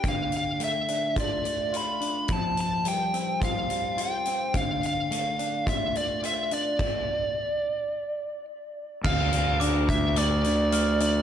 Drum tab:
CC |--------|--------|--------|x-------|
HH |xxxxxxxx|xxxxxxxx|xxxxxxxx|--------|
BD |o---o---|o---o---|o---o---|o-------|

CC |x-------|
HH |-xxxxxxx|
BD |o--o----|